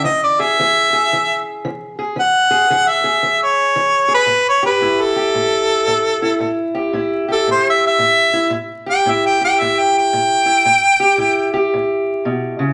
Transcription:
Already playing: steel-string acoustic guitar E4
0.04 steel-string acoustic guitar E3, harmonica D#5
0.24 harmonica D5
0.39 steel-string acoustic guitar G#4, harmonica E5
0.59 steel-string acoustic guitar E3 G#4
0.93 steel-string acoustic guitar G#4
1.13 steel-string acoustic guitar E3
1.65 steel-string acoustic guitar E3
1.99 steel-string acoustic guitar G#4
2.16 steel-string acoustic guitar E3
2.20 harmonica F#5
2.51 steel-string acoustic guitar G#4
2.70 steel-string acoustic guitar E3 G#4
2.88 harmonica E5
3.04 steel-string acoustic guitar G#4
3.23 steel-string acoustic guitar E3
3.43 harmonica C#5
3.76 steel-string acoustic guitar E3
4.08 steel-string acoustic guitar G#4
4.15 harmonica B4
4.26 steel-string acoustic guitar A2
4.49 harmonica C#5
4.63 steel-string acoustic guitar G4, harmonica B4
4.81 steel-string acoustic guitar A2 E4
5.02 harmonica A4
5.16 steel-string acoustic guitar G4
5.35 steel-string acoustic guitar A2
5.87 steel-string acoustic guitar A2
6.22 steel-string acoustic guitar E4
6.40 steel-string acoustic guitar A2
6.75 steel-string acoustic guitar G4
6.93 steel-string acoustic guitar A2 E4
7.28 steel-string acoustic guitar G4, harmonica A4
7.47 steel-string acoustic guitar A2
7.51 harmonica C5
7.70 harmonica E5
7.87 harmonica E5
7.99 steel-string acoustic guitar A2
8.33 steel-string acoustic guitar E4
8.50 steel-string acoustic guitar A2
8.86 steel-string acoustic guitar G4
8.91 harmonica G5
9.06 steel-string acoustic guitar A2 E4
9.11 harmonica E5
9.27 harmonica G5
9.41 steel-string acoustic guitar G4, harmonica G5
9.59 steel-string acoustic guitar A2, harmonica E5
9.79 harmonica G5
9.98 harmonica G5
10.13 steel-string acoustic guitar A2
10.46 steel-string acoustic guitar E4
10.65 steel-string acoustic guitar A2
11.00 steel-string acoustic guitar G4
11.17 steel-string acoustic guitar A2 E4
11.54 steel-string acoustic guitar G4
11.74 steel-string acoustic guitar A2
12.25 steel-string acoustic guitar B2
12.59 steel-string acoustic guitar C#3

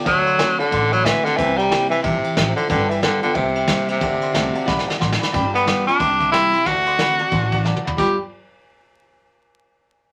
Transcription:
0.05 upright bass D2, steel-string acoustic guitar D3, tenor saxophone F#3, upright piano D5 F#5 A5, kick, ride
0.25 upright piano D5 F#5 C6, ride
0.38 steel-string acoustic guitar D3 A3 C4 F#4, upright piano D5 C6, snare, ride
0.58 tenor saxophone D3, steel-string acoustic guitar C4 F#4, upright piano D5 F#5 A5, muted upright bass stroke, ride
0.71 upright bass A1, steel-string acoustic guitar A2, upright piano D5 F#5 C6, kick, ride
0.92 tenor saxophone F#3, upright piano D5 F#5 B5, ride
1.04 steel-string acoustic guitar D3 A3 C4 F#4, tenor saxophone E3, upright piano D5 F#5 C6, kick, snare, ride
1.25 tenor saxophone D3, steel-string acoustic guitar C4 F#4, upright piano D5 F#5 A5, muted upright bass stroke, snare, ride
1.37 upright bass C2, steel-string acoustic guitar C3, tenor saxophone E3, upright piano C5 E5 G5, kick, ride
1.57 tenor saxophone G3, upright piano C5 E5 A#5, ride
1.69 steel-string acoustic guitar G3 A#3 E4 G4, upright piano C5 G5, snare, ride
1.89 tenor saxophone E3, steel-string acoustic guitar G4, upright piano C5 A5, muted upright bass stroke, ride
2.02 upright bass A#1, tenor saxophone C3, steel-string acoustic guitar E3, upright piano C5 E5 A5, kick, ride
2.23 upright piano C5 E5 G5, muted upright bass stroke, ride
2.36 upright bass A1, steel-string acoustic guitar F3, upright piano C5 E5 G5, kick, snare, ride
2.56 tenor saxophone D3, upright piano C5 E5 A5, ride
2.68 upright bass G1, tenor saxophone D3, steel-string acoustic guitar G3, upright piano B4 D5 G5, kick, ride
2.89 tenor saxophone E3, upright piano B4 D5 G5, ride
3.01 tenor saxophone D3, steel-string acoustic guitar G3 B3 F4, upright piano B4 D5 G5, snare, ride
3.21 tenor saxophone D3, steel-string acoustic guitar B3 F4, upright piano B4 D5 G5, muted upright bass stroke, ride
3.34 upright bass C2, steel-string acoustic guitar C3, tenor saxophone C3, upright piano C5 E5 G5, kick, ride
3.55 upright piano C5 E5 G5, ride
3.67 steel-string acoustic guitar G3 A#3 E4 G4, upright piano C5 E5 A5, kick, snare, ride
3.88 tenor saxophone C3, upright piano C5 E5 G5, snare, ride
4.00 upright bass D2, steel-string acoustic guitar D3, upright piano D5 F#5 A5, kick, ride
4.21 upright piano D5 F#5 C6, muted upright bass stroke, ride
4.33 upright bass C2, steel-string acoustic guitar D3 A3 C4 F#4, upright piano D5 F#5 A5, snare, ride
4.53 steel-string acoustic guitar C4 F#4, upright piano D5 F#5 A5, ride
4.66 upright bass B1, steel-string acoustic guitar E3, upright piano D5 F#5 B5, kick, snare
4.79 snare
4.87 upright piano D5 F#5 A5, muted upright bass stroke, snare
4.99 upright bass A1, steel-string acoustic guitar F#3, upright piano D5 F#5 C6, kick, snare
5.12 snare
5.19 upright piano D5 F#5 B5, snare
5.32 upright bass G1, steel-string acoustic guitar G3, upright piano D5 G5 B5, kick, snare, ride
5.54 tenor saxophone B3, upright piano D5 G5 B5, snare, ride
5.65 steel-string acoustic guitar G3 B3 F4, upright piano D5 G5 D6, snare, ride
5.86 steel-string acoustic guitar B3 F4, tenor saxophone D4, upright piano D5 G5 B5, muted upright bass stroke, ride
5.99 upright bass C2, steel-string acoustic guitar C3, upright piano E5 G5 C6, kick, ride
6.19 upright piano E5 G5 D6, kick, ride
6.31 steel-string acoustic guitar G3 A#3 E4 G4, tenor saxophone E4, upright piano E5 G5 C6, snare, ride
6.52 steel-string acoustic guitar E4 G4, upright piano E5 C6, muted upright bass stroke, ride
6.65 upright bass D2, steel-string acoustic guitar D3, tenor saxophone F#4, upright piano D5 F#5 A5, kick, snare, ride
6.85 upright piano D5 F#5 C6, snare, ride
6.99 steel-string acoustic guitar D3 A3 C4 F#4, upright piano D5 F#5 B5, snare, ride
7.18 steel-string acoustic guitar C4 F#4, upright piano D5 F#5 A5, muted upright bass stroke, ride
7.31 upright bass A1, steel-string acoustic guitar E3, upright piano D5 F#5 C6, kick, ride
7.52 upright piano D5 F#5 A5, kick, ride
7.64 steel-string acoustic guitar F#3, upright piano D5 F#5 A5, snare
7.76 mid tom
7.85 upright piano D5 F#5 B5, floor tom
7.97 upright bass G1, steel-string acoustic guitar G3 B3 F4, tenor saxophone G4, upright piano D5 G5 B5, kick, crash

